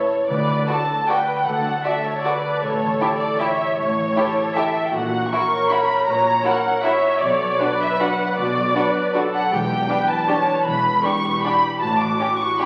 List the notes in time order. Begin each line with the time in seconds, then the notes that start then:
Already playing: A2 A3 C#4 E4 A4 B4 C#5
0.12 A4
0.30 D2 D3 B4 D5
0.49 A3
0.68 F#4 A4 D5 A5
0.89 A4
1.09 F#4 B4 D5 G5
1.29 A4
1.47 D2 D3 A4 F#5
1.66 A3
1.85 F#4 A4 D5 E5
2.05 A4 C#5
2.25 F#4 B4 D5
2.46 A4
2.63 A1 A2 A4 C#5
2.82 E3
3.01 E4 G4
3.20 A4 D5
3.40 E4 G4 C#5 E5
3.60 A4
3.78 A1 A2 C#5
3.97 E3
4.16 E4 G4 A4
4.37 A4
4.56 E4 G4 E5
4.76 A4
4.88 G5
4.94 A#1 A#2 F#4 F#5
5.13 A#3
5.32 E4 F#4 A#4 C#6
5.52 C#5
5.71 E4 F#4 E5 B5
5.90 C#5
6.08 A#1 A#2 C#5 A#5
6.26 A#3
6.45 E4 F#4 A#4 F#5
6.65 C#5
6.84 E4 F#4 C#5 E5
7.04 C#5
7.22 B1 B2 D5
7.40 F#3
7.60 D4 F#4 B4
7.80 B4 E5
8.00 D4 F#4 D5 F#5
8.19 B4
8.37 B1 B2 F#4 D5
8.56 F#3
8.74 D4 F#4 B4
8.95 B4
9.15 D4 F#4 A4 D5
9.34 B4 F#5
9.52 E1 E2 E3 G4 G5
9.71 B3
9.89 D4 E4 G4 B4
10.09 B4 A5
10.28 D4 G4 C#5 D5
10.48 B4
10.66 E1 E2 E3 B4 B5
10.84 B3
11.04 D4 E4 G4 C#6
11.24 B4
11.43 D4 G4 D5 B5
11.64 B4
11.82 A1 A2 F#4 A5
11.99 E3 D6
12.19 C#4 E4 G4
12.40 G4 C#6
12.60 C#4 E4 G4 C#5 B5